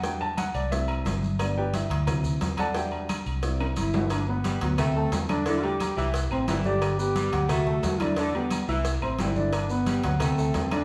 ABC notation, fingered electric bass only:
X:1
M:4/4
L:1/8
Q:1/4=177
K:G
V:1 name="Fingered electric bass" clef=bass
E,,3 C,,3 G,,,2- | G,,,3 D,,3 E,,2- | E,,3 C,,3 G,,,2- | G,,,3 D,,3 E,,2- |
E,,3 C,,2 A,,, G,,,2- | G,,,3 D,,3 E,,2- | E,,3 C,,2 A,,, G,,,2- | G,,,3 D,,3 E,,2 |]